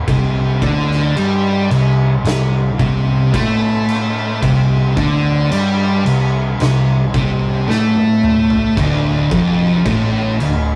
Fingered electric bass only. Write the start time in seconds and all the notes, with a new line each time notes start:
0.08 C2
0.62 D2
1.16 G2
1.71 C2
2.25 C2
2.80 C2
3.34 A2
4.43 C2
4.97 D2
5.52 G2
6.05 C2
6.60 C2
7.14 C2
7.68 A2
8.77 D1
9.31 F1
9.86 A1
10.40 D1